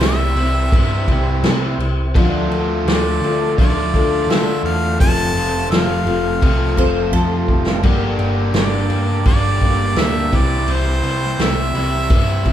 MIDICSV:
0, 0, Header, 1, 8, 480
1, 0, Start_track
1, 0, Tempo, 710900
1, 1452, Time_signature, 4, 2, 24, 8
1, 8458, End_track
2, 0, Start_track
2, 0, Title_t, "Harmonica"
2, 0, Program_c, 0, 22
2, 3, Note_on_c, 0, 76, 101
2, 969, Note_off_c, 0, 76, 0
2, 1948, Note_on_c, 0, 74, 89
2, 2396, Note_off_c, 0, 74, 0
2, 2431, Note_on_c, 0, 74, 97
2, 2905, Note_on_c, 0, 76, 95
2, 2915, Note_off_c, 0, 74, 0
2, 3135, Note_off_c, 0, 76, 0
2, 3139, Note_on_c, 0, 77, 101
2, 3362, Note_off_c, 0, 77, 0
2, 3379, Note_on_c, 0, 81, 127
2, 3832, Note_off_c, 0, 81, 0
2, 3855, Note_on_c, 0, 77, 92
2, 4789, Note_off_c, 0, 77, 0
2, 5775, Note_on_c, 0, 74, 92
2, 6227, Note_off_c, 0, 74, 0
2, 6261, Note_on_c, 0, 74, 107
2, 6745, Note_on_c, 0, 76, 107
2, 6755, Note_off_c, 0, 74, 0
2, 6994, Note_on_c, 0, 74, 98
2, 7004, Note_off_c, 0, 76, 0
2, 7238, Note_on_c, 0, 72, 109
2, 7248, Note_off_c, 0, 74, 0
2, 7714, Note_on_c, 0, 76, 106
2, 7724, Note_off_c, 0, 72, 0
2, 8458, Note_off_c, 0, 76, 0
2, 8458, End_track
3, 0, Start_track
3, 0, Title_t, "Mandolin"
3, 0, Program_c, 1, 25
3, 4580, Note_on_c, 1, 72, 101
3, 4812, Note_off_c, 1, 72, 0
3, 4814, Note_on_c, 1, 69, 97
3, 5280, Note_off_c, 1, 69, 0
3, 8458, End_track
4, 0, Start_track
4, 0, Title_t, "Tonewheel organ"
4, 0, Program_c, 2, 16
4, 0, Note_on_c, 2, 60, 72
4, 0, Note_on_c, 2, 64, 69
4, 0, Note_on_c, 2, 67, 68
4, 0, Note_on_c, 2, 72, 72
4, 1428, Note_off_c, 2, 60, 0
4, 1428, Note_off_c, 2, 67, 0
4, 1429, Note_off_c, 2, 64, 0
4, 1430, Note_off_c, 2, 72, 0
4, 1445, Note_on_c, 2, 57, 66
4, 1448, Note_on_c, 2, 69, 68
4, 1449, Note_on_c, 2, 62, 67
4, 1450, Note_on_c, 2, 65, 64
4, 3355, Note_off_c, 2, 57, 0
4, 3356, Note_off_c, 2, 69, 0
4, 3357, Note_off_c, 2, 62, 0
4, 3357, Note_off_c, 2, 65, 0
4, 3366, Note_on_c, 2, 57, 66
4, 3371, Note_on_c, 2, 69, 65
4, 3372, Note_on_c, 2, 60, 66
4, 3375, Note_on_c, 2, 65, 64
4, 5272, Note_off_c, 2, 57, 0
4, 5274, Note_off_c, 2, 69, 0
4, 5275, Note_off_c, 2, 60, 0
4, 5276, Note_off_c, 2, 65, 0
4, 5286, Note_on_c, 2, 62, 67
4, 5290, Note_on_c, 2, 70, 62
4, 5291, Note_on_c, 2, 58, 66
4, 5298, Note_on_c, 2, 67, 70
4, 6950, Note_off_c, 2, 62, 0
4, 6952, Note_off_c, 2, 58, 0
4, 6952, Note_off_c, 2, 70, 0
4, 6956, Note_off_c, 2, 67, 0
4, 6969, Note_on_c, 2, 64, 76
4, 6972, Note_on_c, 2, 72, 72
4, 6974, Note_on_c, 2, 60, 71
4, 6975, Note_on_c, 2, 67, 68
4, 8458, Note_off_c, 2, 60, 0
4, 8458, Note_off_c, 2, 64, 0
4, 8458, Note_off_c, 2, 67, 0
4, 8458, Note_off_c, 2, 72, 0
4, 8458, End_track
5, 0, Start_track
5, 0, Title_t, "Steel-string acoustic guitar"
5, 0, Program_c, 3, 25
5, 4, Note_on_c, 3, 55, 58
5, 14, Note_on_c, 3, 60, 64
5, 17, Note_on_c, 3, 64, 74
5, 27, Note_on_c, 3, 67, 73
5, 239, Note_off_c, 3, 67, 0
5, 245, Note_off_c, 3, 55, 0
5, 247, Note_on_c, 3, 67, 54
5, 250, Note_off_c, 3, 60, 0
5, 252, Note_off_c, 3, 64, 0
5, 263, Note_on_c, 3, 64, 49
5, 273, Note_on_c, 3, 60, 45
5, 486, Note_off_c, 3, 60, 0
5, 488, Note_off_c, 3, 67, 0
5, 489, Note_on_c, 3, 55, 61
5, 493, Note_off_c, 3, 64, 0
5, 494, Note_on_c, 3, 60, 53
5, 501, Note_on_c, 3, 64, 57
5, 508, Note_on_c, 3, 67, 64
5, 721, Note_off_c, 3, 67, 0
5, 727, Note_off_c, 3, 64, 0
5, 729, Note_off_c, 3, 55, 0
5, 729, Note_on_c, 3, 67, 68
5, 732, Note_off_c, 3, 60, 0
5, 735, Note_on_c, 3, 64, 64
5, 751, Note_on_c, 3, 60, 50
5, 967, Note_on_c, 3, 55, 80
5, 970, Note_off_c, 3, 67, 0
5, 971, Note_off_c, 3, 64, 0
5, 972, Note_off_c, 3, 60, 0
5, 979, Note_on_c, 3, 64, 82
5, 980, Note_on_c, 3, 60, 71
5, 985, Note_on_c, 3, 67, 86
5, 1451, Note_off_c, 3, 55, 0
5, 1454, Note_on_c, 3, 50, 91
5, 1455, Note_on_c, 3, 53, 92
5, 1457, Note_off_c, 3, 60, 0
5, 1457, Note_off_c, 3, 64, 0
5, 1460, Note_off_c, 3, 67, 0
5, 1461, Note_on_c, 3, 62, 98
5, 1464, Note_on_c, 3, 65, 98
5, 1468, Note_on_c, 3, 69, 96
5, 1931, Note_off_c, 3, 53, 0
5, 1934, Note_on_c, 3, 53, 62
5, 1935, Note_off_c, 3, 50, 0
5, 1936, Note_off_c, 3, 62, 0
5, 1944, Note_on_c, 3, 62, 65
5, 1951, Note_off_c, 3, 65, 0
5, 1953, Note_off_c, 3, 69, 0
5, 1954, Note_on_c, 3, 65, 71
5, 1956, Note_on_c, 3, 69, 72
5, 2170, Note_off_c, 3, 69, 0
5, 2175, Note_off_c, 3, 53, 0
5, 2178, Note_on_c, 3, 69, 53
5, 2180, Note_off_c, 3, 62, 0
5, 2185, Note_off_c, 3, 65, 0
5, 2192, Note_on_c, 3, 65, 55
5, 2205, Note_on_c, 3, 62, 42
5, 2416, Note_on_c, 3, 53, 57
5, 2417, Note_off_c, 3, 69, 0
5, 2420, Note_off_c, 3, 62, 0
5, 2422, Note_off_c, 3, 65, 0
5, 2429, Note_on_c, 3, 62, 63
5, 2430, Note_on_c, 3, 65, 69
5, 2441, Note_on_c, 3, 69, 63
5, 2657, Note_off_c, 3, 53, 0
5, 2659, Note_off_c, 3, 69, 0
5, 2663, Note_off_c, 3, 62, 0
5, 2663, Note_off_c, 3, 65, 0
5, 2667, Note_on_c, 3, 69, 59
5, 2676, Note_on_c, 3, 65, 51
5, 2686, Note_on_c, 3, 62, 50
5, 2902, Note_off_c, 3, 69, 0
5, 2907, Note_off_c, 3, 65, 0
5, 2912, Note_off_c, 3, 62, 0
5, 2920, Note_on_c, 3, 62, 68
5, 2926, Note_on_c, 3, 65, 66
5, 2936, Note_on_c, 3, 69, 68
5, 3378, Note_off_c, 3, 65, 0
5, 3378, Note_on_c, 3, 53, 70
5, 3382, Note_off_c, 3, 62, 0
5, 3385, Note_off_c, 3, 69, 0
5, 3385, Note_on_c, 3, 60, 78
5, 3386, Note_on_c, 3, 65, 86
5, 3393, Note_on_c, 3, 69, 82
5, 3848, Note_off_c, 3, 53, 0
5, 3856, Note_on_c, 3, 53, 68
5, 3857, Note_off_c, 3, 60, 0
5, 3862, Note_off_c, 3, 65, 0
5, 3865, Note_off_c, 3, 69, 0
5, 3866, Note_on_c, 3, 60, 61
5, 3870, Note_on_c, 3, 65, 69
5, 3881, Note_on_c, 3, 69, 70
5, 4077, Note_off_c, 3, 69, 0
5, 4086, Note_on_c, 3, 69, 49
5, 4088, Note_off_c, 3, 65, 0
5, 4096, Note_on_c, 3, 65, 52
5, 4097, Note_off_c, 3, 53, 0
5, 4098, Note_off_c, 3, 60, 0
5, 4106, Note_on_c, 3, 60, 44
5, 4324, Note_on_c, 3, 53, 61
5, 4325, Note_off_c, 3, 60, 0
5, 4329, Note_off_c, 3, 65, 0
5, 4332, Note_off_c, 3, 69, 0
5, 4333, Note_on_c, 3, 60, 60
5, 4346, Note_on_c, 3, 69, 65
5, 4556, Note_off_c, 3, 69, 0
5, 4565, Note_on_c, 3, 69, 62
5, 4571, Note_off_c, 3, 53, 0
5, 4573, Note_off_c, 3, 60, 0
5, 4574, Note_on_c, 3, 65, 54
5, 4581, Note_on_c, 3, 60, 47
5, 4794, Note_off_c, 3, 60, 0
5, 4796, Note_on_c, 3, 53, 68
5, 4798, Note_off_c, 3, 65, 0
5, 4802, Note_on_c, 3, 60, 68
5, 4807, Note_off_c, 3, 69, 0
5, 4807, Note_on_c, 3, 65, 69
5, 4816, Note_on_c, 3, 69, 77
5, 5285, Note_on_c, 3, 50, 81
5, 5286, Note_off_c, 3, 53, 0
5, 5287, Note_on_c, 3, 43, 78
5, 5289, Note_off_c, 3, 60, 0
5, 5291, Note_off_c, 3, 65, 0
5, 5293, Note_off_c, 3, 69, 0
5, 5294, Note_on_c, 3, 55, 90
5, 5295, Note_on_c, 3, 58, 94
5, 5296, Note_on_c, 3, 67, 92
5, 5298, Note_on_c, 3, 62, 93
5, 5754, Note_off_c, 3, 55, 0
5, 5757, Note_on_c, 3, 55, 60
5, 5761, Note_off_c, 3, 58, 0
5, 5764, Note_off_c, 3, 62, 0
5, 5769, Note_on_c, 3, 58, 62
5, 5770, Note_off_c, 3, 50, 0
5, 5771, Note_off_c, 3, 43, 0
5, 5772, Note_on_c, 3, 62, 73
5, 5776, Note_off_c, 3, 67, 0
5, 5779, Note_on_c, 3, 67, 72
5, 5997, Note_off_c, 3, 67, 0
5, 6005, Note_off_c, 3, 55, 0
5, 6005, Note_on_c, 3, 67, 56
5, 6007, Note_off_c, 3, 62, 0
5, 6012, Note_off_c, 3, 58, 0
5, 6015, Note_on_c, 3, 62, 51
5, 6029, Note_on_c, 3, 55, 45
5, 6029, Note_on_c, 3, 58, 46
5, 6240, Note_off_c, 3, 55, 0
5, 6248, Note_on_c, 3, 55, 55
5, 6249, Note_off_c, 3, 67, 0
5, 6252, Note_off_c, 3, 58, 0
5, 6254, Note_off_c, 3, 62, 0
5, 6260, Note_on_c, 3, 58, 59
5, 6263, Note_on_c, 3, 62, 67
5, 6266, Note_on_c, 3, 67, 65
5, 6480, Note_off_c, 3, 67, 0
5, 6488, Note_on_c, 3, 67, 57
5, 6490, Note_off_c, 3, 55, 0
5, 6491, Note_off_c, 3, 62, 0
5, 6496, Note_off_c, 3, 58, 0
5, 6499, Note_on_c, 3, 62, 55
5, 6504, Note_on_c, 3, 58, 49
5, 6509, Note_on_c, 3, 55, 42
5, 6718, Note_off_c, 3, 55, 0
5, 6723, Note_off_c, 3, 58, 0
5, 6726, Note_on_c, 3, 55, 63
5, 6729, Note_off_c, 3, 62, 0
5, 6730, Note_off_c, 3, 67, 0
5, 6731, Note_on_c, 3, 58, 66
5, 6737, Note_on_c, 3, 62, 69
5, 6967, Note_off_c, 3, 62, 0
5, 6968, Note_off_c, 3, 55, 0
5, 6969, Note_on_c, 3, 64, 69
5, 6969, Note_on_c, 3, 67, 67
5, 6971, Note_off_c, 3, 58, 0
5, 6974, Note_on_c, 3, 60, 64
5, 6980, Note_on_c, 3, 55, 62
5, 6985, Note_on_c, 3, 48, 54
5, 7687, Note_off_c, 3, 55, 0
5, 7688, Note_off_c, 3, 64, 0
5, 7688, Note_off_c, 3, 67, 0
5, 7691, Note_off_c, 3, 60, 0
5, 7695, Note_on_c, 3, 55, 63
5, 7696, Note_off_c, 3, 48, 0
5, 7705, Note_on_c, 3, 60, 67
5, 7710, Note_on_c, 3, 64, 66
5, 7717, Note_on_c, 3, 67, 77
5, 7918, Note_off_c, 3, 67, 0
5, 7926, Note_on_c, 3, 67, 57
5, 7931, Note_off_c, 3, 55, 0
5, 7936, Note_off_c, 3, 64, 0
5, 7937, Note_off_c, 3, 60, 0
5, 7945, Note_on_c, 3, 64, 51
5, 7947, Note_on_c, 3, 60, 44
5, 8162, Note_on_c, 3, 55, 55
5, 8166, Note_off_c, 3, 67, 0
5, 8167, Note_off_c, 3, 60, 0
5, 8175, Note_on_c, 3, 60, 65
5, 8176, Note_off_c, 3, 64, 0
5, 8183, Note_on_c, 3, 64, 60
5, 8188, Note_on_c, 3, 67, 68
5, 8394, Note_off_c, 3, 67, 0
5, 8402, Note_on_c, 3, 67, 60
5, 8404, Note_off_c, 3, 55, 0
5, 8408, Note_off_c, 3, 64, 0
5, 8410, Note_off_c, 3, 60, 0
5, 8416, Note_on_c, 3, 64, 58
5, 8423, Note_on_c, 3, 60, 50
5, 8458, Note_off_c, 3, 60, 0
5, 8458, Note_off_c, 3, 64, 0
5, 8458, Note_off_c, 3, 67, 0
5, 8458, End_track
6, 0, Start_track
6, 0, Title_t, "Overdriven electric guitar"
6, 0, Program_c, 4, 29
6, 0, Note_on_c, 4, 48, 93
6, 0, Note_on_c, 4, 52, 101
6, 0, Note_on_c, 4, 55, 104
6, 0, Note_on_c, 4, 60, 91
6, 0, Note_on_c, 4, 64, 96
6, 227, Note_off_c, 4, 48, 0
6, 229, Note_off_c, 4, 52, 0
6, 230, Note_off_c, 4, 55, 0
6, 232, Note_off_c, 4, 60, 0
6, 232, Note_off_c, 4, 64, 0
6, 253, Note_on_c, 4, 52, 77
6, 254, Note_on_c, 4, 55, 77
6, 255, Note_on_c, 4, 48, 65
6, 1200, Note_off_c, 4, 52, 0
6, 1201, Note_off_c, 4, 48, 0
6, 1201, Note_off_c, 4, 55, 0
6, 1453, Note_on_c, 4, 57, 97
6, 2415, Note_on_c, 4, 50, 83
6, 2417, Note_off_c, 4, 57, 0
6, 2420, Note_on_c, 4, 57, 98
6, 3363, Note_off_c, 4, 50, 0
6, 3365, Note_off_c, 4, 57, 0
6, 3369, Note_on_c, 4, 41, 84
6, 3374, Note_on_c, 4, 48, 95
6, 3380, Note_on_c, 4, 57, 97
6, 4319, Note_off_c, 4, 41, 0
6, 4322, Note_off_c, 4, 48, 0
6, 4324, Note_off_c, 4, 57, 0
6, 4331, Note_on_c, 4, 41, 85
6, 4338, Note_on_c, 4, 48, 92
6, 4341, Note_on_c, 4, 57, 83
6, 4345, Note_on_c, 4, 65, 93
6, 5278, Note_off_c, 4, 41, 0
6, 5282, Note_off_c, 4, 48, 0
6, 5284, Note_off_c, 4, 57, 0
6, 5286, Note_off_c, 4, 65, 0
6, 6251, Note_on_c, 4, 43, 83
6, 6256, Note_on_c, 4, 50, 91
6, 6956, Note_off_c, 4, 43, 0
6, 6959, Note_off_c, 4, 50, 0
6, 6972, Note_on_c, 4, 52, 94
6, 7914, Note_off_c, 4, 52, 0
6, 7940, Note_on_c, 4, 55, 80
6, 7943, Note_on_c, 4, 52, 74
6, 7948, Note_on_c, 4, 48, 67
6, 8458, Note_off_c, 4, 48, 0
6, 8458, Note_off_c, 4, 52, 0
6, 8458, Note_off_c, 4, 55, 0
6, 8458, End_track
7, 0, Start_track
7, 0, Title_t, "Picked electric bass"
7, 0, Program_c, 5, 34
7, 0, Note_on_c, 5, 36, 92
7, 230, Note_off_c, 5, 36, 0
7, 234, Note_on_c, 5, 36, 96
7, 468, Note_off_c, 5, 36, 0
7, 485, Note_on_c, 5, 43, 85
7, 715, Note_off_c, 5, 43, 0
7, 728, Note_on_c, 5, 36, 91
7, 957, Note_off_c, 5, 36, 0
7, 966, Note_on_c, 5, 48, 89
7, 1196, Note_off_c, 5, 48, 0
7, 1201, Note_on_c, 5, 36, 92
7, 1434, Note_off_c, 5, 36, 0
7, 1449, Note_on_c, 5, 38, 97
7, 1679, Note_off_c, 5, 38, 0
7, 1690, Note_on_c, 5, 38, 82
7, 1920, Note_off_c, 5, 38, 0
7, 1928, Note_on_c, 5, 38, 95
7, 2159, Note_off_c, 5, 38, 0
7, 2165, Note_on_c, 5, 50, 94
7, 2398, Note_off_c, 5, 50, 0
7, 2416, Note_on_c, 5, 38, 91
7, 2644, Note_off_c, 5, 38, 0
7, 2660, Note_on_c, 5, 38, 91
7, 2879, Note_off_c, 5, 38, 0
7, 2883, Note_on_c, 5, 50, 90
7, 3117, Note_off_c, 5, 50, 0
7, 3126, Note_on_c, 5, 40, 93
7, 3359, Note_off_c, 5, 40, 0
7, 3375, Note_on_c, 5, 29, 96
7, 3597, Note_off_c, 5, 29, 0
7, 3601, Note_on_c, 5, 29, 82
7, 3836, Note_off_c, 5, 29, 0
7, 3840, Note_on_c, 5, 29, 91
7, 4076, Note_off_c, 5, 29, 0
7, 4084, Note_on_c, 5, 29, 94
7, 4318, Note_off_c, 5, 29, 0
7, 4337, Note_on_c, 5, 36, 90
7, 4564, Note_off_c, 5, 36, 0
7, 4571, Note_on_c, 5, 29, 91
7, 4801, Note_off_c, 5, 29, 0
7, 4812, Note_on_c, 5, 41, 88
7, 5042, Note_off_c, 5, 41, 0
7, 5054, Note_on_c, 5, 29, 89
7, 5286, Note_off_c, 5, 29, 0
7, 5286, Note_on_c, 5, 31, 98
7, 5518, Note_off_c, 5, 31, 0
7, 5527, Note_on_c, 5, 31, 82
7, 5758, Note_off_c, 5, 31, 0
7, 5762, Note_on_c, 5, 31, 91
7, 5995, Note_off_c, 5, 31, 0
7, 6004, Note_on_c, 5, 43, 95
7, 6236, Note_off_c, 5, 43, 0
7, 6250, Note_on_c, 5, 31, 87
7, 6478, Note_off_c, 5, 31, 0
7, 6492, Note_on_c, 5, 31, 91
7, 6716, Note_off_c, 5, 31, 0
7, 6720, Note_on_c, 5, 38, 91
7, 6953, Note_off_c, 5, 38, 0
7, 6970, Note_on_c, 5, 36, 93
7, 7197, Note_off_c, 5, 36, 0
7, 7206, Note_on_c, 5, 36, 98
7, 7435, Note_off_c, 5, 36, 0
7, 7447, Note_on_c, 5, 36, 85
7, 7675, Note_off_c, 5, 36, 0
7, 7683, Note_on_c, 5, 36, 94
7, 7913, Note_off_c, 5, 36, 0
7, 7926, Note_on_c, 5, 36, 93
7, 8153, Note_off_c, 5, 36, 0
7, 8168, Note_on_c, 5, 43, 87
7, 8394, Note_off_c, 5, 43, 0
7, 8407, Note_on_c, 5, 36, 86
7, 8458, Note_off_c, 5, 36, 0
7, 8458, End_track
8, 0, Start_track
8, 0, Title_t, "Drums"
8, 5, Note_on_c, 9, 49, 89
8, 9, Note_on_c, 9, 38, 114
8, 72, Note_off_c, 9, 49, 0
8, 77, Note_off_c, 9, 38, 0
8, 248, Note_on_c, 9, 49, 63
8, 315, Note_off_c, 9, 49, 0
8, 489, Note_on_c, 9, 36, 117
8, 495, Note_on_c, 9, 49, 89
8, 556, Note_off_c, 9, 36, 0
8, 562, Note_off_c, 9, 49, 0
8, 728, Note_on_c, 9, 36, 87
8, 729, Note_on_c, 9, 49, 60
8, 795, Note_off_c, 9, 36, 0
8, 797, Note_off_c, 9, 49, 0
8, 969, Note_on_c, 9, 49, 89
8, 974, Note_on_c, 9, 38, 116
8, 1037, Note_off_c, 9, 49, 0
8, 1042, Note_off_c, 9, 38, 0
8, 1218, Note_on_c, 9, 49, 61
8, 1285, Note_off_c, 9, 49, 0
8, 1453, Note_on_c, 9, 36, 112
8, 1457, Note_on_c, 9, 49, 84
8, 1521, Note_off_c, 9, 36, 0
8, 1524, Note_off_c, 9, 49, 0
8, 1698, Note_on_c, 9, 49, 58
8, 1766, Note_off_c, 9, 49, 0
8, 1942, Note_on_c, 9, 49, 76
8, 1947, Note_on_c, 9, 38, 109
8, 2009, Note_off_c, 9, 49, 0
8, 2014, Note_off_c, 9, 38, 0
8, 2185, Note_on_c, 9, 49, 60
8, 2253, Note_off_c, 9, 49, 0
8, 2419, Note_on_c, 9, 36, 117
8, 2422, Note_on_c, 9, 49, 74
8, 2487, Note_off_c, 9, 36, 0
8, 2490, Note_off_c, 9, 49, 0
8, 2660, Note_on_c, 9, 36, 80
8, 2669, Note_on_c, 9, 49, 58
8, 2727, Note_off_c, 9, 36, 0
8, 2737, Note_off_c, 9, 49, 0
8, 2904, Note_on_c, 9, 49, 83
8, 2909, Note_on_c, 9, 38, 115
8, 2972, Note_off_c, 9, 49, 0
8, 2976, Note_off_c, 9, 38, 0
8, 3144, Note_on_c, 9, 49, 57
8, 3212, Note_off_c, 9, 49, 0
8, 3379, Note_on_c, 9, 36, 113
8, 3383, Note_on_c, 9, 49, 80
8, 3446, Note_off_c, 9, 36, 0
8, 3451, Note_off_c, 9, 49, 0
8, 3627, Note_on_c, 9, 49, 61
8, 3695, Note_off_c, 9, 49, 0
8, 3860, Note_on_c, 9, 49, 87
8, 3865, Note_on_c, 9, 38, 107
8, 3928, Note_off_c, 9, 49, 0
8, 3932, Note_off_c, 9, 38, 0
8, 4097, Note_on_c, 9, 49, 62
8, 4164, Note_off_c, 9, 49, 0
8, 4337, Note_on_c, 9, 36, 117
8, 4337, Note_on_c, 9, 49, 86
8, 4404, Note_off_c, 9, 49, 0
8, 4405, Note_off_c, 9, 36, 0
8, 4572, Note_on_c, 9, 49, 60
8, 4575, Note_on_c, 9, 36, 88
8, 4640, Note_off_c, 9, 49, 0
8, 4642, Note_off_c, 9, 36, 0
8, 4813, Note_on_c, 9, 36, 66
8, 4880, Note_off_c, 9, 36, 0
8, 5054, Note_on_c, 9, 36, 86
8, 5121, Note_off_c, 9, 36, 0
8, 5174, Note_on_c, 9, 38, 92
8, 5241, Note_off_c, 9, 38, 0
8, 5290, Note_on_c, 9, 49, 85
8, 5292, Note_on_c, 9, 36, 108
8, 5357, Note_off_c, 9, 49, 0
8, 5359, Note_off_c, 9, 36, 0
8, 5529, Note_on_c, 9, 49, 59
8, 5596, Note_off_c, 9, 49, 0
8, 5765, Note_on_c, 9, 49, 80
8, 5769, Note_on_c, 9, 38, 108
8, 5832, Note_off_c, 9, 49, 0
8, 5837, Note_off_c, 9, 38, 0
8, 6008, Note_on_c, 9, 49, 59
8, 6075, Note_off_c, 9, 49, 0
8, 6249, Note_on_c, 9, 49, 80
8, 6251, Note_on_c, 9, 36, 113
8, 6316, Note_off_c, 9, 49, 0
8, 6319, Note_off_c, 9, 36, 0
8, 6490, Note_on_c, 9, 49, 52
8, 6492, Note_on_c, 9, 36, 76
8, 6558, Note_off_c, 9, 49, 0
8, 6559, Note_off_c, 9, 36, 0
8, 6727, Note_on_c, 9, 49, 75
8, 6732, Note_on_c, 9, 38, 116
8, 6795, Note_off_c, 9, 49, 0
8, 6800, Note_off_c, 9, 38, 0
8, 6973, Note_on_c, 9, 36, 99
8, 6975, Note_on_c, 9, 49, 59
8, 7040, Note_off_c, 9, 36, 0
8, 7042, Note_off_c, 9, 49, 0
8, 7209, Note_on_c, 9, 49, 80
8, 7276, Note_off_c, 9, 49, 0
8, 7450, Note_on_c, 9, 49, 60
8, 7518, Note_off_c, 9, 49, 0
8, 7573, Note_on_c, 9, 38, 34
8, 7640, Note_off_c, 9, 38, 0
8, 7693, Note_on_c, 9, 49, 77
8, 7697, Note_on_c, 9, 38, 111
8, 7760, Note_off_c, 9, 49, 0
8, 7765, Note_off_c, 9, 38, 0
8, 7933, Note_on_c, 9, 49, 62
8, 8000, Note_off_c, 9, 49, 0
8, 8170, Note_on_c, 9, 49, 78
8, 8171, Note_on_c, 9, 36, 120
8, 8238, Note_off_c, 9, 36, 0
8, 8238, Note_off_c, 9, 49, 0
8, 8409, Note_on_c, 9, 49, 62
8, 8410, Note_on_c, 9, 36, 84
8, 8458, Note_off_c, 9, 36, 0
8, 8458, Note_off_c, 9, 49, 0
8, 8458, End_track
0, 0, End_of_file